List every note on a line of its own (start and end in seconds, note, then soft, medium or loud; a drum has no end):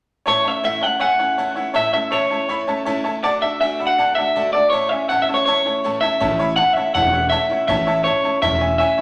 0.26 0.45 A2 medium
0.26 0.45 E3 medium
0.26 0.46 A3 medium
0.26 0.45 C#4 medium
0.26 0.44 E4 medium
0.26 0.37 C#5 medium
0.26 0.48 C#5 medium
0.26 0.38 E5 medium
0.26 0.38 A5 loud
0.44 0.63 A3 soft
0.44 0.63 C#4 soft
0.44 0.64 E4 soft
0.44 0.56 C#5 medium
0.44 0.56 E5 medium
0.44 0.64 E5 medium
0.44 0.56 A5 medium
0.63 0.82 A2 medium
0.63 0.82 E3 medium
0.63 0.82 A3 medium
0.63 0.83 C#4 medium
0.63 0.81 E4 medium
0.63 0.75 C#5 medium
0.63 0.75 E5 medium
0.63 0.83 E5 medium
0.63 0.75 F#5 medium
0.81 1.00 A3 soft
0.81 1.01 C#4 soft
0.81 1.01 E4 medium
0.81 0.93 C#5 medium
0.81 0.93 E5 medium
0.81 1.00 F#5 loud
0.81 0.93 A5 medium
1.00 1.19 E3 medium
1.00 1.19 A3 medium
1.00 1.19 C#4 medium
1.00 1.18 E4 medium
1.00 1.11 C#5 medium
1.00 1.12 E5 medium
1.00 1.53 F#5 loud
1.00 1.12 G#5 loud
1.19 1.38 A3 soft
1.19 1.38 C#4 soft
1.19 1.38 E4 medium
1.19 1.30 C#5 medium
1.19 1.31 E5 medium
1.19 1.31 G#5 medium
1.38 1.57 A2 medium
1.38 1.57 E3 medium
1.38 1.57 A3 medium
1.38 1.57 C#4 medium
1.38 1.55 E4 medium
1.38 1.49 C#5 medium
1.38 1.49 E5 medium
1.38 1.49 A5 medium
1.55 1.75 C#4 medium
1.55 1.75 E4 medium
1.55 1.67 C#5 medium
1.55 1.67 E5 medium
1.55 1.68 F#5 medium
1.60 1.74 A3 soft
1.74 1.93 A2 medium
1.74 1.94 E3 medium
1.74 1.94 A3 medium
1.74 1.93 C#4 medium
1.74 1.92 E4 medium
1.74 1.86 C#5 medium
1.74 1.86 E5 medium
1.74 1.92 E5 medium
1.74 1.86 A5 loud
1.93 2.11 A3 soft
1.93 2.12 C#4 soft
1.93 2.12 E4 medium
1.93 2.04 C#5 medium
1.93 2.13 E5 medium
1.93 2.05 E5 medium
1.93 2.05 A5 medium
2.11 2.30 A2 medium
2.11 2.31 E3 medium
2.11 2.31 A3 medium
2.11 2.31 C#4 medium
2.11 2.30 E4 medium
2.11 2.23 C#5 medium
2.11 3.01 C#5 medium
2.11 2.23 E5 medium
2.11 2.23 A5 medium
2.30 2.49 A3 soft
2.30 2.49 C#4 medium
2.30 2.49 E4 medium
2.30 2.42 C#5 medium
2.30 2.42 E5 medium
2.30 2.42 A5 medium
2.49 2.68 E3 medium
2.49 2.68 A3 medium
2.49 2.67 C#4 medium
2.49 2.66 E4 medium
2.49 2.60 C#5 medium
2.49 2.61 E5 medium
2.49 2.61 B5 loud
2.67 2.86 A3 soft
2.67 2.86 C#4 medium
2.67 2.86 E4 medium
2.67 2.79 C#5 medium
2.67 2.79 E5 medium
2.67 2.79 A5 loud
2.85 3.05 A2 medium
2.85 3.05 E3 medium
2.85 3.05 A3 medium
2.85 3.06 C#4 medium
2.85 3.04 E4 medium
2.85 2.97 C#5 medium
2.85 2.97 E5 medium
2.85 2.98 A5 loud
3.04 3.24 C#4 medium
3.04 3.24 E4 medium
3.04 3.16 C#5 medium
3.04 3.16 E5 medium
3.04 3.16 A5 loud
3.08 3.23 A3 soft
3.23 3.42 D3 medium
3.23 3.43 A3 medium
3.23 3.43 D4 medium
3.23 3.42 F#4 loud
3.23 3.35 D5 loud
3.23 3.29 D5 medium
3.23 3.34 F#5 medium
3.23 3.35 A5 loud
3.41 3.61 D4 soft
3.41 3.61 F#4 medium
3.41 3.53 D5 medium
3.41 3.60 E5 medium
3.41 3.53 F#5 medium
3.41 3.53 A5 medium
3.45 3.61 A3 soft
3.60 3.80 D3 medium
3.60 3.80 A3 medium
3.60 3.80 D4 medium
3.60 3.79 F#4 medium
3.60 3.72 D5 medium
3.60 3.78 E5 medium
3.60 3.72 F#5 medium
3.60 3.72 G#5 medium
3.79 3.98 A3 soft
3.79 3.99 D4 soft
3.79 3.99 F#4 medium
3.79 3.90 D5 medium
3.79 3.91 F#5 medium
3.79 3.91 B5 medium
3.87 4.15 F#5 loud
3.98 4.17 D3 medium
3.98 4.17 A3 medium
3.98 4.18 D4 medium
3.98 4.16 F#4 medium
3.98 4.09 D5 medium
3.98 4.09 F#5 medium
3.98 4.10 A5 loud
4.15 4.35 D4 soft
4.15 4.35 F#4 soft
4.15 4.28 D5 medium
4.15 4.52 E5 loud
4.15 4.28 F#5 medium
4.15 4.29 A5 medium
4.20 4.35 A3 soft
4.36 4.54 D3 medium
4.36 4.54 A3 medium
4.36 4.54 D4 medium
4.36 4.53 F#4 medium
4.36 4.46 D5 medium
4.36 4.46 F#5 medium
4.36 4.47 A5 medium
4.53 4.73 D4 soft
4.53 4.73 F#4 medium
4.53 4.69 D5 medium
4.53 4.65 D5 medium
4.53 4.65 F#5 medium
4.53 4.65 A5 medium
4.57 4.73 A3 soft
4.70 4.91 A2 medium
4.70 4.91 E3 medium
4.70 4.89 C#5 medium
4.70 4.83 C#5 medium
4.70 4.84 E5 medium
4.70 4.84 A5 loud
4.74 4.92 A3 medium
4.74 4.91 C#4 medium
4.74 4.90 E4 medium
4.89 5.09 C#4 medium
4.89 5.10 E4 medium
4.89 5.02 C#5 medium
4.89 5.09 E5 medium
4.89 5.02 E5 medium
4.89 5.03 G#5 medium
4.94 5.09 A3 soft
5.09 5.28 A2 medium
5.09 5.28 E3 medium
5.09 5.28 A3 medium
5.09 5.28 C#4 medium
5.09 5.27 E4 medium
5.09 5.21 C#5 medium
5.09 5.21 E5 medium
5.09 5.21 F#5 medium
5.09 5.21 A5 medium
5.22 5.27 E5 medium
5.28 5.47 A3 soft
5.28 5.47 C#4 soft
5.28 5.47 E4 soft
5.28 5.40 C#5 medium
5.28 5.40 E5 medium
5.28 5.40 A5 medium
5.34 5.44 C#5 medium
5.46 5.65 E3 medium
5.46 5.66 A3 medium
5.46 5.65 C#4 medium
5.46 5.64 E4 medium
5.46 5.98 C#5 medium
5.46 5.58 C#5 loud
5.46 5.58 E5 medium
5.46 5.58 A5 loud
5.65 5.83 A3 soft
5.65 5.84 C#4 soft
5.65 5.83 E4 soft
5.65 5.77 C#5 medium
5.65 5.77 E5 medium
5.65 5.77 A5 medium
5.84 6.02 A2 medium
5.84 6.02 E3 medium
5.84 6.03 A3 medium
5.84 6.02 C#4 medium
5.84 6.01 E4 medium
5.84 5.95 C#5 medium
5.84 5.95 E5 medium
5.84 5.96 A5 medium
6.01 6.20 C#4 medium
6.01 6.20 E4 medium
6.01 6.13 C#5 medium
6.01 6.56 E5 loud
6.01 6.14 E5 medium
6.01 6.14 A5 medium
6.05 6.20 A3 medium
6.20 6.60 A1 medium
6.20 6.39 A2 medium
6.20 6.39 E3 medium
6.20 6.39 A3 medium
6.20 6.38 C#4 medium
6.20 6.37 E4 medium
6.20 6.32 C#5 medium
6.20 6.32 E5 medium
6.20 6.32 A5 loud
6.38 6.56 A3 soft
6.38 6.57 C#4 soft
6.38 6.57 E4 medium
6.38 6.50 C#5 loud
6.38 6.51 E5 medium
6.38 6.51 B5 loud
6.56 6.76 E3 medium
6.56 6.76 A3 medium
6.56 6.76 C#4 medium
6.56 6.75 E4 medium
6.56 6.69 C#5 medium
6.56 6.69 E5 medium
6.56 6.73 F#5 medium
6.56 6.69 A5 medium
6.73 6.95 C#4 medium
6.73 6.94 E4 medium
6.73 6.87 C#5 medium
6.73 6.93 E5 loud
6.73 muted upright bass stroke medium
6.77 6.94 A3 soft
6.77 6.88 E5 medium
6.77 6.88 A5 medium
6.94 7.34 E1 medium
6.94 7.13 A2 medium
6.94 7.13 E3 medium
6.94 7.14 A3 medium
6.94 7.13 C#4 medium
6.94 7.11 E4 medium
6.94 7.06 C#5 medium
6.94 7.06 E5 medium
6.94 7.29 F#5 loud
6.94 7.06 A5 medium
7.13 7.31 A3 soft
7.13 7.32 C#4 soft
7.13 7.31 E4 medium
7.13 7.24 C#5 medium
7.13 7.24 E5 medium
7.13 7.24 F#5 medium
7.30 7.50 E3 medium
7.30 7.50 A3 medium
7.30 7.49 C#4 medium
7.30 7.48 E4 medium
7.30 7.43 C#5 medium
7.30 7.65 E5 loud
7.30 7.43 E5 medium
7.30 7.43 A5 loud
7.49 7.68 A3 soft
7.49 7.69 C#4 soft
7.49 7.68 E4 medium
7.49 7.62 C#5 medium
7.49 7.62 E5 medium
7.49 7.62 F#5 medium
7.49 muted upright bass stroke medium
7.68 8.07 A1 medium
7.68 7.87 A2 medium
7.68 7.87 E3 medium
7.68 7.87 A3 medium
7.68 7.87 C#4 medium
7.68 7.85 E4 medium
7.68 7.80 C#5 loud
7.68 8.03 E5 loud
7.68 7.80 E5 medium
7.68 7.81 A5 loud
7.87 8.05 A3 soft
7.87 8.06 C#4 medium
7.87 8.05 E4 medium
7.87 7.98 C#5 loud
7.87 7.98 E5 loud
7.87 7.99 A5 loud
8.04 8.24 E3 medium
8.04 8.25 A3 medium
8.04 8.24 C#4 medium
8.04 8.23 E4 medium
8.04 8.42 C#5 medium
8.04 8.17 C#5 medium
8.04 8.17 E5 medium
8.04 8.17 A5 medium
8.24 8.42 A3 soft
8.24 8.43 C#4 soft
8.24 8.43 E4 soft
8.24 8.35 C#5 medium
8.24 8.36 E5 medium
8.24 8.36 A5 medium
8.24 muted upright bass stroke medium
8.42 8.81 E1 medium
8.42 8.61 A2 medium
8.42 8.61 E3 medium
8.42 8.62 A3 medium
8.42 8.61 C#4 medium
8.42 8.60 E4 loud
8.42 8.53 C#5 medium
8.42 8.77 E5 loud
8.42 8.54 E5 medium
8.42 8.54 A5 medium
8.61 8.80 A3 soft
8.61 8.80 C#4 soft
8.61 8.80 E4 medium
8.61 8.72 C#5 medium
8.61 8.72 E5 medium
8.61 8.73 G#5 medium
8.78 8.99 E3 medium
8.78 8.99 A3 medium
8.78 8.99 C#4 medium
8.78 8.97 E4 medium
8.78 8.91 C#5 medium
8.78 9.01 E5 medium
8.78 8.91 E5 medium
8.78 8.91 G#5 loud
8.98 9.01 C#5 medium
8.98 muted upright bass stroke medium